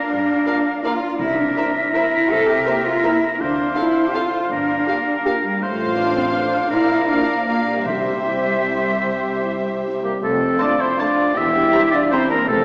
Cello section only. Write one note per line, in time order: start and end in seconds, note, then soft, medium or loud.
0.00 0.84 D4 medium
0.84 1.20 F4 medium
1.19 1.37 E4 medium
1.37 1.94 D4 medium
1.93 2.29 E4 medium
2.29 2.48 A4 medium
2.48 2.86 G4 medium
2.86 3.04 F4 medium
3.04 3.40 E4 medium
3.39 3.75 D4 medium
3.76 4.07 E4 medium
4.06 4.14 G4 medium
4.14 4.50 F4 medium
4.50 5.23 D4 medium
5.43 5.60 G3 medium
5.61 5.97 A3 medium
5.97 6.16 D4 medium
6.16 6.35 C4 medium
6.34 6.71 D4 medium
6.71 7.09 E4 medium
7.08 7.48 D4 medium
7.47 7.85 A#3 soft
7.86 10.00 G3 medium
10.22 10.54 F2 medium
11.36 11.67 E2 medium
12.47 12.65 F2 medium